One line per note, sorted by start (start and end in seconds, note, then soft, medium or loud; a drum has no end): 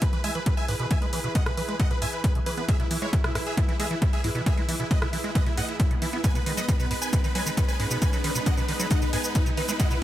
0.00 0.06 B2 medium
0.00 6.20 E3 medium
0.00 6.20 E4 medium
0.00 6.20 G#4 medium
0.00 6.20 B4 medium
0.00 0.09 B4 medium
0.00 kick loud
0.00 closed hi-hat medium
0.00 riser medium
0.13 0.18 E3 loud
0.13 0.20 B4 medium
0.13 closed hi-hat soft
0.24 0.39 E2 loud
0.24 0.31 G#3 medium
0.24 0.32 E5 medium
0.24 0.32 G#5 medium
0.24 open hi-hat loud
0.35 0.40 E3 medium
0.35 0.43 B4 medium
0.35 closed hi-hat soft
0.46 0.51 B2 medium
0.46 0.54 B4 medium
0.46 kick loud
0.46 closed hi-hat medium
0.57 0.65 E5 medium
0.57 0.65 G#5 loud
0.57 closed hi-hat soft
0.68 0.76 E2 medium
0.68 0.75 G#2 medium
0.68 0.76 B4 medium
0.68 open hi-hat medium
0.80 0.95 E2 loud
0.80 0.86 B2 loud
0.80 0.87 B4 medium
0.80 closed hi-hat soft
0.91 0.95 E3 medium
0.91 0.98 E5 medium
0.91 0.98 G#5 medium
0.91 kick loud
0.91 closed hi-hat medium
1.02 1.06 G#3 loud
1.02 1.09 B4 medium
1.02 closed hi-hat soft
1.13 1.28 E2 loud
1.13 1.20 E3 medium
1.13 1.20 B4 medium
1.13 open hi-hat loud
1.24 1.29 B2 medium
1.24 1.32 B4 medium
1.24 closed hi-hat soft
1.35 1.40 G#2 medium
1.35 1.43 D#5 medium
1.35 1.43 F#5 medium
1.35 kick loud
1.35 closed hi-hat medium
1.46 1.51 B2 medium
1.46 1.54 B4 medium
1.46 cross-stick medium
1.46 closed hi-hat soft
1.57 1.72 B1 medium
1.57 1.62 E3 medium
1.57 1.65 B4 medium
1.57 open hi-hat medium
1.68 1.75 G#3 loud
1.68 1.76 B4 medium
1.68 closed hi-hat soft
1.80 1.84 E3 medium
1.80 1.87 D#5 medium
1.80 1.87 F#5 medium
1.80 kick loud
1.80 closed hi-hat medium
1.91 1.93 B2 loud
1.91 1.98 B4 medium
1.91 closed hi-hat soft
2.02 2.17 E2 loud
2.02 2.06 G#2 medium
2.02 2.09 E5 medium
2.02 2.09 G#5 loud
2.02 open hi-hat loud
2.13 2.21 B4 medium
2.13 closed hi-hat soft
2.24 2.32 B4 medium
2.24 kick loud
2.24 closed hi-hat medium
2.35 2.40 B2 medium
2.35 closed hi-hat soft
2.46 2.54 E2 medium
2.46 2.51 E3 medium
2.46 2.54 B4 medium
2.46 open hi-hat medium
2.57 2.72 E2 loud
2.57 2.62 B3 medium
2.57 2.65 B4 medium
2.57 closed hi-hat soft
2.68 2.73 G#2 loud
2.68 2.76 G#4 medium
2.68 2.76 E5 loud
2.68 kick loud
2.68 closed hi-hat medium
2.80 2.84 B2 loud
2.80 2.87 E4 medium
2.80 closed hi-hat soft
2.91 3.06 E2 loud
2.91 2.98 E3 medium
2.91 2.98 E4 medium
2.91 open hi-hat loud
3.02 3.06 G#3 loud
3.02 3.09 E4 medium
3.02 3.09 C#5 loud
3.02 closed hi-hat soft
3.13 3.18 E3 medium
3.13 3.20 E4 medium
3.13 kick loud
3.13 closed hi-hat medium
3.24 3.31 B2 medium
3.24 3.32 E4 medium
3.24 cross-stick medium
3.24 closed hi-hat soft
3.35 3.50 B1 medium
3.35 3.38 G#2 loud
3.35 3.43 E4 medium
3.35 cross-stick medium
3.35 open hi-hat loud
3.46 3.54 G#4 medium
3.46 3.54 E5 medium
3.46 closed hi-hat soft
3.57 3.62 B2 medium
3.57 3.65 E4 medium
3.57 kick loud
3.57 closed hi-hat medium
3.68 3.73 E3 loud
3.68 3.76 E4 medium
3.68 closed hi-hat soft
3.79 3.95 E2 medium
3.79 3.86 G#3 medium
3.79 3.87 G#4 medium
3.79 3.87 E5 medium
3.79 open hi-hat loud
3.91 3.95 E3 medium
3.91 3.98 E4 medium
3.91 closed hi-hat soft
4.02 4.06 B2 medium
4.02 4.09 E4 medium
4.02 kick loud
4.02 closed hi-hat medium
4.13 4.21 G#4 medium
4.13 4.21 E5 loud
4.13 closed hi-hat soft
4.24 4.32 E2 medium
4.24 4.31 G#2 medium
4.24 4.32 E4 medium
4.24 open hi-hat medium
4.35 4.50 E2 loud
4.35 4.42 B2 loud
4.35 4.43 E4 medium
4.35 closed hi-hat soft
4.46 4.51 E3 medium
4.46 4.54 G#4 medium
4.46 4.54 E5 loud
4.46 kick loud
4.46 closed hi-hat medium
4.57 4.62 G#3 loud
4.57 4.65 E4 medium
4.57 closed hi-hat soft
4.68 4.84 E2 loud
4.68 4.75 E3 medium
4.68 4.76 E4 medium
4.68 open hi-hat loud
4.80 4.84 B2 medium
4.80 4.87 E4 medium
4.91 4.95 G#2 medium
4.91 4.98 B4 medium
4.91 4.98 D#5 medium
4.91 kick loud
4.91 closed hi-hat medium
5.02 5.06 B2 medium
5.02 5.09 E4 medium
5.02 cross-stick medium
5.02 closed hi-hat soft
5.13 5.28 B1 medium
5.13 5.18 E3 medium
5.13 5.20 E4 medium
5.13 open hi-hat loud
5.24 5.31 G#3 loud
5.24 5.32 E4 medium
5.24 closed hi-hat soft
5.35 5.40 E3 medium
5.35 5.43 B4 medium
5.35 5.43 D#5 medium
5.35 kick loud
5.35 closed hi-hat medium
5.46 5.49 B2 loud
5.46 5.54 E4 medium
5.46 closed hi-hat soft
5.57 5.72 E2 loud
5.57 5.62 G#2 medium
5.57 5.65 D#5 medium
5.57 5.65 F#5 loud
5.57 open hi-hat loud
5.69 5.76 E4 medium
5.69 closed hi-hat soft
5.80 5.87 E4 medium
5.80 kick loud
5.80 closed hi-hat medium
5.91 5.95 B2 medium
5.91 closed hi-hat soft
6.02 6.09 E2 medium
6.02 6.06 E3 medium
6.02 6.09 E4 medium
6.02 open hi-hat medium
6.13 6.28 B1 medium
6.13 6.18 B3 medium
6.13 6.21 E4 medium
6.13 closed hi-hat soft
6.24 6.29 G#2 loud
6.24 10.03 G#3 medium
6.24 10.03 B3 medium
6.24 10.03 D#4 medium
6.24 6.32 B4 medium
6.24 6.32 G#5 loud
6.24 kick loud
6.24 closed hi-hat medium
6.24 shaker medium
6.35 6.40 B2 loud
6.35 6.43 B4 medium
6.35 closed hi-hat soft
6.35 shaker soft
6.46 6.61 B1 loud
6.46 6.53 D#3 medium
6.46 6.54 B4 medium
6.46 open hi-hat loud
6.57 6.62 F#3 loud
6.57 6.65 B4 medium
6.57 6.65 D#5 medium
6.57 closed hi-hat soft
6.57 shaker medium
6.68 6.73 D#3 medium
6.68 6.76 B4 medium
6.68 kick loud
6.68 closed hi-hat medium
6.68 shaker medium
6.79 6.86 B2 medium
6.79 6.87 B4 medium
6.79 closed hi-hat soft
6.79 shaker soft
6.91 7.06 G#1 medium
6.91 6.94 G#2 loud
6.91 6.98 B4 medium
6.91 open hi-hat loud
7.02 7.09 B4 medium
7.02 7.09 G#5 medium
7.02 closed hi-hat soft
7.02 shaker medium
7.13 7.17 B2 medium
7.13 7.20 B4 medium
7.13 kick loud
7.13 closed hi-hat medium
7.13 shaker medium
7.24 7.29 D#3 loud
7.24 7.31 B4 medium
7.24 closed hi-hat soft
7.24 shaker soft
7.35 7.50 B1 loud
7.35 7.42 F#3 medium
7.35 7.43 B4 medium
7.35 7.43 G#5 medium
7.35 open hi-hat loud
7.46 7.51 D#3 medium
7.46 7.54 B4 medium
7.46 closed hi-hat soft
7.46 shaker medium
7.57 7.62 B2 medium
7.57 7.65 B4 medium
7.57 kick loud
7.57 closed hi-hat medium
7.57 shaker medium
7.68 7.76 B4 medium
7.68 7.76 G#5 medium
7.68 closed hi-hat soft
7.68 shaker soft
7.79 7.87 B1 loud
7.79 7.87 G#2 medium
7.79 7.87 B4 medium
7.79 open hi-hat medium
7.91 8.06 B1 loud
7.91 7.98 B2 loud
7.91 7.98 B4 medium
7.91 closed hi-hat soft
7.91 shaker medium
8.02 8.06 D#3 medium
8.02 8.09 B4 medium
8.02 8.09 G#5 medium
8.02 kick loud
8.02 closed hi-hat medium
8.02 shaker medium
8.13 8.18 F#3 loud
8.13 8.20 B4 medium
8.13 closed hi-hat soft
8.13 shaker soft
8.24 8.39 B1 loud
8.24 8.31 D#3 medium
8.24 8.32 B4 medium
8.24 open hi-hat loud
8.35 8.40 B2 medium
8.35 8.43 B4 medium
8.35 shaker medium
8.46 8.51 G#2 medium
8.46 8.54 D#5 medium
8.46 8.54 F#5 medium
8.46 kick loud
8.46 closed hi-hat medium
8.46 shaker medium
8.57 8.62 B2 medium
8.57 8.65 B4 medium
8.57 closed hi-hat soft
8.57 shaker soft
8.69 8.84 G#1 medium
8.69 8.73 D#3 medium
8.69 8.76 B4 medium
8.69 open hi-hat medium
8.80 8.87 F#3 loud
8.80 8.87 B4 medium
8.80 closed hi-hat soft
8.80 shaker medium
8.91 8.95 D#3 medium
8.91 8.98 D#5 medium
8.91 8.98 F#5 medium
8.91 kick loud
8.91 closed hi-hat medium
8.91 shaker medium
9.02 9.05 B2 loud
9.02 9.09 B4 medium
9.02 closed hi-hat soft
9.02 shaker soft
9.13 9.28 B1 loud
9.13 9.18 G#2 medium
9.13 9.21 B4 medium
9.13 9.21 G#5 medium
9.13 open hi-hat loud
9.24 9.32 B4 medium
9.24 closed hi-hat soft
9.24 shaker medium
9.35 9.43 B4 medium
9.35 kick loud
9.35 closed hi-hat medium
9.35 shaker medium
9.46 9.51 B2 medium
9.46 closed hi-hat soft
9.46 shaker soft
9.57 9.65 B1 medium
9.57 9.62 D#3 medium
9.57 9.65 B4 medium
9.57 open hi-hat medium
9.69 9.84 B1 loud
9.69 9.73 G#3 medium
9.69 9.76 B4 medium
9.69 closed hi-hat soft
9.69 shaker medium
9.80 9.84 G#2 loud
9.80 9.87 D#5 medium
9.80 9.87 F#5 loud
9.80 kick loud
9.80 closed hi-hat loud
9.80 shaker medium
9.91 9.95 B2 loud
9.91 9.98 B4 medium
9.91 closed hi-hat soft
9.91 shaker soft